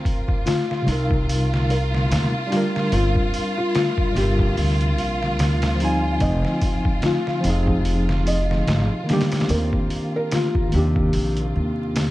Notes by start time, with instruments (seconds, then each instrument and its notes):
Already playing: nylon-string guitar C4, violin section F4, felt piano A#4
0.05 kick, open hi-hat
0.28 kick
0.46 nylon-string guitar F4, snare, open hi-hat
0.71 snare
0.82 tine electric piano C3 G3
0.87 upright bass C2, nylon-string guitar C3, tine electric piano D#4, open hi-hat
0.92 tine electric piano A#4
1.11 kick
1.29 open hi-hat
1.54 snare
1.70 felt piano A#4, open hi-hat
1.95 snare
2.10 upright bass D#2, snare, open hi-hat
2.47 tine electric piano G3 D4
2.52 nylon-string guitar G3, tine electric piano F4, snare, open hi-hat
2.57 tine electric piano A#4
2.76 snare
2.92 upright bass G1, nylon-string guitar C4, felt piano F4, open hi-hat
3.16 kick
3.34 open hi-hat
3.58 felt piano F4
3.75 nylon-string guitar F4, snare, open hi-hat
3.98 kick
4.12 upright bass G1, tine electric piano G3 D4
4.16 nylon-string guitar C3, tine electric piano F4, felt piano G4, open hi-hat
4.21 tine electric piano A#4
4.39 kick
4.57 upright bass D2, open hi-hat
4.81 closed hi-hat
4.98 upright bass A#1, open hi-hat
5.23 snare
5.39 upright bass D2, snare, open hi-hat
5.62 snare, open hi-hat
5.75 tine electric piano F3 C4
5.80 nylon-string guitar G3, tine electric piano D#4, open hi-hat
5.85 tine electric piano G#5
6.20 upright bass F1, nylon-string guitar C4, felt piano D#5, kick, open hi-hat
6.45 snare
6.61 kick, open hi-hat
6.85 kick
7.02 nylon-string guitar F4, snare, open hi-hat
7.27 snare
7.41 tine electric piano F3 C4, open hi-hat
7.45 upright bass F1, nylon-string guitar C3, tine electric piano D#4
7.50 tine electric piano G#4
7.67 kick
7.85 open hi-hat
8.09 snare
8.27 felt piano D#5, open hi-hat
8.51 snare
8.67 upright bass G#1, snare, open hi-hat
9.04 tine electric piano D#3 A#3
9.09 nylon-string guitar G3, tine electric piano D4, snare, open hi-hat
9.13 tine electric piano G4
9.21 snare, open hi-hat
9.32 snare, open hi-hat
9.40 snare, open hi-hat
9.49 upright bass D#2, nylon-string guitar C4, felt piano A#4, open hi-hat
9.73 kick
9.90 open hi-hat
10.16 felt piano A#4
10.31 nylon-string guitar F4, snare, open hi-hat
10.55 kick
10.69 tine electric piano D#3 A#3, open hi-hat
10.74 upright bass D#2, nylon-string guitar C3, tine electric piano D4, felt piano G4
10.79 tine electric piano G4
10.96 kick
11.13 upright bass A#1, open hi-hat
11.37 closed hi-hat
11.56 upright bass D#2
11.96 snare, open hi-hat